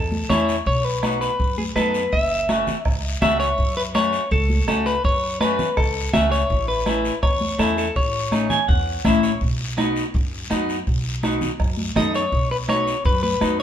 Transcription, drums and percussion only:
0.12 high conga medium
0.30 bombo rim medium
0.30 high conga medium
0.30 low conga medium
0.30 short guiro medium
0.48 short guiro medium
0.66 bombo low medium
0.66 long guiro medium
1.03 bombo rim medium
1.03 high conga medium
1.03 short guiro medium
1.22 short guiro medium
1.40 bombo low medium
1.40 long guiro medium
1.58 high conga medium
1.76 bombo rim medium
1.76 high conga medium
1.76 short guiro medium
1.94 short guiro medium
2.12 bombo low medium
2.12 long guiro medium
2.49 bombo rim medium
2.49 high conga medium
2.49 short guiro medium
2.67 low conga medium
2.67 short guiro medium
2.85 bombo low medium
2.85 bombo rim medium
2.85 long guiro medium
3.22 bombo rim medium
3.22 high conga medium
3.22 low conga medium
3.22 short guiro medium
3.40 short guiro medium
3.58 bombo low medium
3.58 long guiro medium
3.95 bombo rim medium
3.95 high conga medium
3.95 short guiro medium
4.13 short guiro medium
4.31 bombo low medium
4.31 long guiro medium
4.50 high conga medium
4.68 bombo rim medium
4.68 high conga medium
4.68 short guiro medium
4.86 short guiro medium
5.04 bombo low medium
5.04 long guiro medium
5.41 bombo rim medium
5.41 high conga medium
5.41 short guiro medium
5.59 low conga medium
5.59 short guiro medium
5.77 bombo low medium
5.77 bombo rim medium
5.77 long guiro medium
6.14 bombo rim medium
6.14 high conga medium
6.14 low conga medium
6.14 short guiro medium
6.32 short guiro medium
6.50 bombo low medium
6.50 long guiro medium
6.86 bombo rim medium
6.86 high conga medium
6.86 short guiro medium
7.05 short guiro medium
7.23 bombo low medium
7.23 bombo rim medium
7.23 long guiro medium
7.41 high conga medium
7.59 bombo rim medium
7.59 high conga medium
7.59 short guiro medium
7.78 short guiro medium
7.96 bombo low medium
7.96 long guiro medium
8.32 bombo rim medium
8.32 high conga medium
8.32 short guiro medium
8.50 low conga medium
8.50 short guiro medium
8.69 bombo low medium
8.69 long guiro medium
9.05 bombo low medium
9.05 bombo rim medium
9.05 high conga medium
9.05 low conga medium
9.05 short guiro medium
9.23 short guiro medium
9.41 bombo low medium
9.41 long guiro medium
9.78 bombo rim medium
9.78 high conga medium
9.78 short guiro medium
9.96 short guiro medium
10.14 bombo low medium
10.14 long guiro medium
10.50 bombo rim medium
10.50 high conga medium
10.50 short guiro medium
10.69 short guiro medium
10.87 bombo low medium
10.87 long guiro medium
11.23 bombo rim medium
11.23 high conga medium
11.23 short guiro medium
11.41 low conga medium
11.41 short guiro medium
11.60 bombo low medium
11.60 bombo rim medium
11.60 long guiro medium
11.77 high conga medium
11.96 bombo rim medium
11.96 high conga medium
11.96 low conga medium
11.96 short guiro medium
12.14 short guiro medium
12.32 bombo low medium
12.32 long guiro medium
12.69 bombo rim medium
12.69 high conga medium
12.69 short guiro medium
12.87 short guiro medium
13.05 bombo low medium
13.05 long guiro medium
13.23 high conga medium
13.41 bombo rim medium
13.41 high conga medium
13.41 short guiro medium

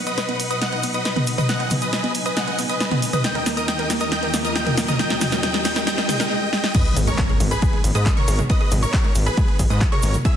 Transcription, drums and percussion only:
0.06 closed hi-hat soft
0.06 cabasa medium
0.18 snare soft
0.18 closed hi-hat medium
0.18 cabasa soft
0.29 closed hi-hat medium
0.40 open hi-hat loud
0.40 cabasa medium
0.50 closed hi-hat soft
0.50 cabasa soft
0.61 snare medium
0.61 closed hi-hat medium
0.61 cabasa soft
0.73 closed hi-hat medium
0.83 open hi-hat loud
0.83 cabasa medium
0.93 closed hi-hat medium
0.93 cabasa medium
1.05 snare medium
1.05 closed hi-hat medium
1.05 cabasa soft
1.16 closed hi-hat soft
1.16 mid tom medium
1.27 open hi-hat loud
1.27 cabasa medium
1.38 closed hi-hat soft
1.38 mid tom medium
1.38 cabasa soft
1.49 snare medium
1.49 closed hi-hat medium
1.49 cabasa soft
1.60 closed hi-hat medium
1.70 open hi-hat loud
1.70 mid tom medium
1.70 cabasa medium
1.81 closed hi-hat medium
1.81 cabasa medium
1.93 snare medium
1.93 closed hi-hat medium
1.93 cabasa soft
2.04 closed hi-hat medium
2.15 open hi-hat loud
2.15 cabasa medium
2.25 closed hi-hat medium
2.25 cabasa medium
2.36 snare medium
2.36 closed hi-hat medium
2.36 cabasa soft
2.48 closed hi-hat medium
2.58 open hi-hat loud
2.58 cabasa medium
2.69 closed hi-hat medium
2.69 cabasa medium
2.81 snare medium
2.81 closed hi-hat medium
2.81 cabasa soft
2.91 closed hi-hat medium
2.91 mid tom medium
3.02 open hi-hat loud
3.02 cabasa medium
3.13 closed hi-hat medium
3.13 mid tom medium
3.13 cabasa soft
3.24 snare medium
3.24 closed hi-hat loud
3.24 cabasa soft
3.35 closed hi-hat soft
3.46 snare medium
3.46 open hi-hat loud
3.46 cabasa medium
3.57 closed hi-hat medium
3.57 cabasa medium
3.68 snare medium
3.68 closed hi-hat loud
3.68 cabasa soft
3.79 closed hi-hat medium
3.90 snare medium
3.90 open hi-hat loud
3.90 cabasa medium
4.00 closed hi-hat medium
4.00 cabasa soft
4.12 snare medium
4.12 closed hi-hat medium
4.12 cabasa soft
4.23 closed hi-hat medium
4.34 snare medium
4.34 open hi-hat loud
4.34 cabasa medium
4.45 closed hi-hat medium
4.45 cabasa medium
4.56 snare medium
4.56 closed hi-hat medium
4.56 cabasa soft
4.67 closed hi-hat medium
4.67 mid tom medium
4.77 snare loud
4.77 open hi-hat loud
4.77 cabasa medium
4.88 closed hi-hat medium
4.88 mid tom medium
4.88 cabasa medium
4.99 snare medium
4.99 closed hi-hat loud
4.99 cabasa soft
5.10 snare medium
5.10 closed hi-hat medium
5.21 snare medium
5.21 open hi-hat loud
5.21 mid tom medium
5.21 cabasa medium
5.32 snare medium
5.32 closed hi-hat medium
5.32 cabasa medium
5.42 snare loud
5.42 closed hi-hat loud
5.42 cabasa soft
5.54 snare medium
5.54 closed hi-hat medium
5.65 snare loud
5.65 open hi-hat loud
5.65 cabasa medium
5.76 snare medium
5.76 closed hi-hat medium
5.76 cabasa soft
5.87 snare loud
5.87 closed hi-hat loud
5.87 cabasa soft
5.98 snare medium
5.98 closed hi-hat medium
6.09 snare loud
6.09 open hi-hat loud
6.09 mid tom medium
6.09 cabasa medium
6.20 snare loud
6.20 closed hi-hat medium
6.20 cabasa medium
6.53 snare medium
6.64 snare medium
6.74 kick loud
6.74 closed hi-hat medium
6.74 crash loud
6.74 cabasa soft
6.86 closed hi-hat soft
6.97 open hi-hat loud
6.97 cabasa medium
7.07 closed hi-hat medium
7.07 cabasa medium
7.18 kick loud
7.18 clap loud
7.18 closed hi-hat medium
7.18 cabasa soft
7.29 closed hi-hat soft
7.40 open hi-hat loud
7.40 cabasa loud
7.51 closed hi-hat medium
7.51 cabasa medium
7.62 kick loud
7.62 closed hi-hat medium
7.62 cabasa soft
7.73 closed hi-hat soft
7.84 open hi-hat loud
7.84 cabasa medium
7.95 closed hi-hat medium
7.95 cabasa medium
8.06 kick loud
8.06 clap loud
8.06 closed hi-hat medium
8.06 cabasa soft
8.17 mid tom medium
8.28 open hi-hat loud
8.28 cabasa loud
8.39 closed hi-hat medium
8.39 mid tom medium
8.39 cabasa soft
8.50 kick loud
8.50 closed hi-hat medium
8.50 cabasa soft
8.61 closed hi-hat soft
8.71 open hi-hat loud
8.71 mid tom medium
8.71 cabasa medium
8.83 closed hi-hat medium
8.83 cabasa medium
8.93 kick loud
8.93 clap loud
8.93 closed hi-hat medium
8.93 cabasa soft
9.05 closed hi-hat soft
9.15 open hi-hat loud
9.15 cabasa loud
9.26 closed hi-hat medium
9.26 cabasa medium
9.37 kick loud
9.37 closed hi-hat medium
9.37 cabasa soft
9.48 closed hi-hat soft
9.59 kick medium
9.59 open hi-hat loud
9.59 cabasa medium
9.70 closed hi-hat medium
9.70 cabasa medium
9.81 kick loud
9.81 clap loud
9.81 closed hi-hat medium
9.81 cabasa soft
9.92 mid tom medium
10.03 open hi-hat loud
10.03 cabasa loud
10.14 closed hi-hat medium
10.14 mid tom medium
10.14 cabasa medium
10.25 kick loud
10.25 closed hi-hat medium
10.25 cabasa soft

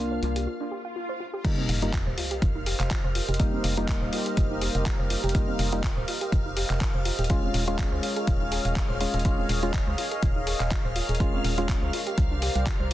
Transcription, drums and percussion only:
0.23 closed hi-hat soft
0.36 closed hi-hat medium
1.45 kick loud
1.45 closed hi-hat medium
1.45 crash loud
1.69 open hi-hat loud
1.82 closed hi-hat medium
1.93 kick loud
1.93 clap loud
1.93 closed hi-hat medium
2.18 open hi-hat loud
2.31 closed hi-hat medium
2.42 kick loud
2.42 closed hi-hat medium
2.66 open hi-hat loud
2.80 clap soft
2.80 closed hi-hat medium
2.91 kick loud
2.91 clap loud
2.91 closed hi-hat medium
3.15 open hi-hat loud
3.29 closed hi-hat soft
3.34 closed hi-hat medium
3.40 kick loud
3.40 closed hi-hat medium
3.64 open hi-hat loud
3.77 closed hi-hat medium
3.88 kick loud
3.88 clap loud
3.88 closed hi-hat medium
4.13 open hi-hat loud
4.26 closed hi-hat medium
4.37 kick loud
4.37 closed hi-hat medium
4.62 open hi-hat loud
4.75 closed hi-hat medium
4.86 kick loud
4.86 clap loud
4.86 closed hi-hat medium
5.10 open hi-hat loud
5.24 closed hi-hat soft
5.29 closed hi-hat medium
5.35 kick loud
5.35 closed hi-hat medium
5.59 open hi-hat loud
5.72 closed hi-hat medium
5.84 kick loud
5.84 clap loud
5.84 closed hi-hat medium
6.08 open hi-hat loud
6.21 closed hi-hat medium
6.32 kick loud
6.32 closed hi-hat medium
6.57 open hi-hat loud
6.70 clap soft
6.70 closed hi-hat soft
6.81 kick loud
6.81 clap loud
6.81 closed hi-hat medium
7.05 open hi-hat loud
7.19 closed hi-hat soft
7.24 closed hi-hat medium
7.30 kick loud
7.30 closed hi-hat medium
7.54 open hi-hat loud
7.68 closed hi-hat medium
7.79 kick loud
7.79 clap loud
7.79 closed hi-hat medium
8.03 open hi-hat loud
8.16 closed hi-hat medium
8.27 kick loud
8.27 closed hi-hat medium
8.52 open hi-hat loud
8.65 closed hi-hat medium
8.76 kick loud
8.76 clap loud
8.76 closed hi-hat medium
9.01 open hi-hat loud
9.14 closed hi-hat soft
9.19 closed hi-hat medium
9.25 kick loud
9.25 closed hi-hat medium
9.49 open hi-hat loud
9.63 closed hi-hat medium
9.74 kick loud
9.74 clap loud
9.74 closed hi-hat medium
9.98 open hi-hat loud
10.11 closed hi-hat medium
10.23 kick loud
10.23 closed hi-hat medium
10.47 open hi-hat loud
10.60 clap soft
10.60 closed hi-hat soft
10.71 kick loud
10.71 clap loud
10.71 closed hi-hat medium
10.96 open hi-hat loud
11.09 closed hi-hat soft
11.15 closed hi-hat medium
11.20 kick loud
11.20 closed hi-hat medium
11.44 open hi-hat loud
11.58 closed hi-hat medium
11.69 kick loud
11.69 clap loud
11.69 closed hi-hat medium
11.93 open hi-hat loud
12.07 closed hi-hat medium
12.18 kick loud
12.18 closed hi-hat medium
12.42 open hi-hat loud
12.55 closed hi-hat medium
12.66 kick loud
12.66 clap loud
12.66 closed hi-hat medium

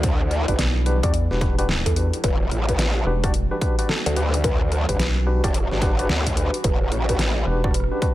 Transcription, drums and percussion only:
0.03 kick loud
0.03 closed hi-hat medium
0.31 cross-stick medium
0.31 closed hi-hat soft
0.48 kick medium
0.48 closed hi-hat medium
0.59 snare loud
0.59 closed hi-hat medium
0.86 closed hi-hat soft
1.03 kick loud
1.03 cross-stick medium
1.03 closed hi-hat medium
1.14 closed hi-hat medium
1.31 snare soft
1.41 kick loud
1.41 closed hi-hat soft
1.59 closed hi-hat medium
1.69 snare loud
1.86 kick medium
1.86 closed hi-hat medium
1.96 closed hi-hat medium
2.13 closed hi-hat medium
2.24 kick loud
2.24 closed hi-hat medium
2.51 cross-stick medium
2.51 closed hi-hat soft
2.69 kick medium
2.69 closed hi-hat medium
2.79 snare loud
2.79 closed hi-hat medium
3.24 kick loud
3.24 cross-stick medium
3.24 closed hi-hat medium
3.34 closed hi-hat medium
3.61 kick loud
3.61 closed hi-hat soft
3.79 closed hi-hat medium
3.89 snare loud
4.06 closed hi-hat medium
4.16 closed hi-hat medium
4.34 closed hi-hat medium
4.44 kick loud
4.44 closed hi-hat medium
4.72 cross-stick medium
4.72 closed hi-hat soft
4.89 kick medium
4.89 closed hi-hat medium
5.00 snare loud
5.00 closed hi-hat medium
5.44 kick loud
5.44 cross-stick medium
5.44 closed hi-hat medium
5.54 closed hi-hat medium
5.71 snare soft
5.82 kick loud
5.82 closed hi-hat soft
5.99 closed hi-hat medium
6.09 snare loud
6.26 kick medium
6.26 closed hi-hat medium
6.37 closed hi-hat medium
6.54 closed hi-hat medium
6.64 kick loud
6.64 closed hi-hat medium
6.92 cross-stick medium
6.92 closed hi-hat soft
7.09 kick medium
7.09 closed hi-hat medium
7.19 snare loud
7.19 closed hi-hat medium
7.64 kick loud
7.64 cross-stick soft
7.71 cross-stick soft
7.74 cross-stick soft
7.74 closed hi-hat medium
7.80 cross-stick soft
7.84 cross-stick soft
8.02 kick loud
8.02 closed hi-hat soft

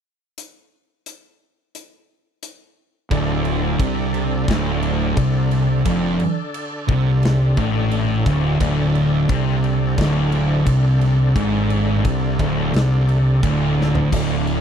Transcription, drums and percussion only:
0.38 closed hi-hat medium
1.06 closed hi-hat medium
1.75 closed hi-hat medium
2.43 closed hi-hat medium
3.11 kick loud
3.11 crash medium
3.45 crash medium
3.80 kick loud
3.80 crash medium
4.14 crash medium
4.48 kick loud
4.48 snare loud
4.48 crash medium
4.83 crash medium
5.17 kick loud
5.17 crash medium
5.51 snare soft
5.51 crash medium
5.85 kick loud
5.85 crash medium
6.20 crash medium
6.54 crash medium
6.89 kick loud
6.89 crash medium
7.23 snare loud
7.23 crash medium
7.57 kick loud
7.57 crash medium
7.91 crash medium
8.26 kick loud
8.26 snare soft
8.26 crash medium
8.60 kick loud
8.60 crash medium
8.95 crash medium
9.29 kick loud
9.29 crash medium
9.64 crash medium
9.98 kick loud
9.98 snare loud
9.98 crash medium
10.32 crash medium
10.66 kick loud
10.66 crash medium
11.01 snare soft
11.01 crash medium
11.36 kick loud
11.36 crash medium
11.70 crash medium
12.05 kick loud
12.05 crash medium
12.39 kick loud
12.39 crash medium
12.74 snare loud
12.74 crash medium
13.09 crash medium
13.43 kick loud
13.43 crash medium
13.81 snare medium
13.95 floor tom medium
14.12 kick loud
14.12 crash loud
14.12 crash medium
14.47 crash medium

